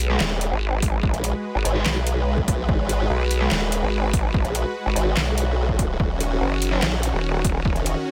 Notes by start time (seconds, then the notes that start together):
Already playing: B1 G#3 F#4 B4
0.10 G#3 F#4 B4
0.20 D#1, snare, clap
0.41 closed hi-hat
0.52 G#1
0.82 kick, open hi-hat
1.03 kick
1.14 A#1, closed hi-hat
1.24 closed hi-hat
1.55 G#1
1.65 G#1, closed hi-hat
1.75 G#3 F#4 B4
1.86 B1, snare, clap
2.07 closed hi-hat
2.38 kick
2.48 kick, open hi-hat
2.69 G#1, kick
2.89 closed hi-hat
3.10 B1
3.31 closed hi-hat
3.41 G#3 F#4 B4
3.51 D#1, snare, clap
3.72 closed hi-hat
3.83 G#1
4.13 kick, open hi-hat
4.34 kick
4.45 A#1, closed hi-hat
4.55 closed hi-hat
4.86 G#1
4.96 G#1, closed hi-hat
5.17 B1, snare, clap
5.38 closed hi-hat
5.69 kick
5.79 kick, open hi-hat
6.00 D#1 D#3 C#4, kick
6.20 closed hi-hat
6.41 F#1
6.62 closed hi-hat
6.72 F#3 D#4 C#5
6.82 A#1, snare, clap
7.03 closed hi-hat
7.14 D#1
7.45 kick, open hi-hat
7.65 kick
7.76 E1, closed hi-hat
7.86 closed hi-hat